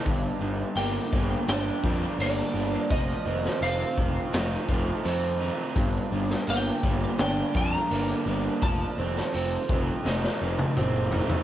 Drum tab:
HH |o---o---o---o---|o---o---o---o---|o---o---o---o---|o---o-----------|
SD |--------o-------|---o----o-------|---o----o-------|---o----oo------|
T1 |----------------|----------------|----------------|-----------o----|
T2 |----------------|----------------|----------------|------------o---|
FT |----------------|----------------|----------------|--------------oo|
BD |o-----o---o-----|o-----o---o-----|o-----o---o-----|o-----o---------|